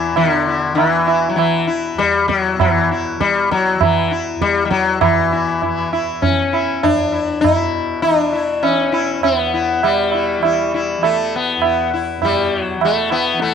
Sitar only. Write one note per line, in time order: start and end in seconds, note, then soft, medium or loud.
0.00 0.16 E3 medium
0.00 0.14 E4 soft
0.17 0.74 D3 medium
0.47 0.76 E4 soft
0.75 1.29 E3 medium
1.07 1.36 E4 soft
1.29 1.37 F#3 medium
1.36 1.65 E3 medium
1.67 1.96 E4 soft
1.98 2.28 G3 medium
2.28 2.60 F#3 medium
2.61 2.89 E3 medium
2.91 3.19 E4 soft
3.20 3.49 G3 medium
3.51 3.83 F#3 medium
3.83 4.10 E3 medium
4.11 4.40 E4 soft
4.42 4.64 G3 loud
4.65 4.70 G3 medium
4.70 5.00 F#3 medium
5.01 5.88 E3 medium
5.32 5.61 E4 soft
5.63 5.91 E4 soft
5.93 6.21 E4 soft
6.22 6.85 C#4 medium
6.53 6.81 E4 soft
6.83 7.40 D4 medium
7.12 7.40 E4 soft
7.41 7.56 D#4 loud
7.56 8.02 E4 loud
8.02 8.17 D#4 loud
8.17 8.65 D4 loud
8.33 8.61 E4 soft
8.63 9.19 C#4 medium
8.92 9.21 E4 soft
9.24 9.79 B3 medium
9.54 9.81 E4 soft
9.84 11.06 G3 medium
10.14 10.41 E4 soft
10.44 10.71 E4 soft
10.74 11.01 E4 soft
11.04 11.33 A3 medium
11.35 11.89 B3 medium
11.64 11.91 E4 soft
11.93 12.20 E4 soft
12.22 12.59 G3 medium
12.22 12.49 E4 soft
12.59 12.84 F#3 medium
12.85 13.10 A3 medium
13.11 13.41 B3 medium
13.11 13.38 E4 soft
13.42 13.54 A3 medium
13.42 13.54 E4 soft